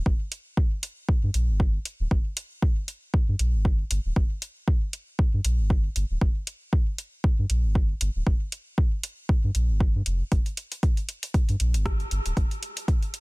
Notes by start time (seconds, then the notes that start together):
0.06 G1, kick
0.32 closed hi-hat
0.57 kick
0.83 closed hi-hat
1.09 kick
1.23 G2
1.34 A#1, closed hi-hat
1.48 G1
1.60 kick
1.85 closed hi-hat
2.00 D1
2.11 kick
2.37 closed hi-hat
2.62 kick
2.88 closed hi-hat
3.14 kick
3.28 G2
3.39 A#1, closed hi-hat
3.54 G1
3.65 kick
3.91 G1, closed hi-hat
4.05 D1
4.16 G1, kick
4.42 closed hi-hat
4.68 kick
4.93 closed hi-hat
5.19 kick
5.33 G2
5.44 A#1, closed hi-hat
5.59 G1
5.70 kick
5.96 G1, closed hi-hat
6.10 D1
6.21 G1, kick
6.47 closed hi-hat
6.73 kick
6.98 closed hi-hat
7.24 kick
7.38 G2
7.50 A#1, closed hi-hat
7.64 G1
7.75 kick
8.01 G1, closed hi-hat
8.15 D1
8.27 kick
8.52 closed hi-hat
8.78 kick
9.03 closed hi-hat
9.29 kick
9.43 G2
9.55 A#1, closed hi-hat
9.69 G1
9.80 kick
9.95 G2
10.06 F1, closed hi-hat
10.32 G1, kick, closed hi-hat
10.46 closed hi-hat
10.57 closed hi-hat
10.72 closed hi-hat
10.83 kick, closed hi-hat
10.97 closed hi-hat
11.09 closed hi-hat
11.23 closed hi-hat
11.34 kick, closed hi-hat
11.49 G2, closed hi-hat
11.60 A#1, closed hi-hat
11.74 G1, closed hi-hat
11.86 kick, cross-stick, closed hi-hat
12.00 closed hi-hat
12.11 G1, closed hi-hat
12.26 D1, closed hi-hat
12.37 G1, kick, closed hi-hat
12.51 closed hi-hat
12.63 closed hi-hat
12.77 closed hi-hat
12.88 kick, closed hi-hat
13.03 closed hi-hat
13.14 closed hi-hat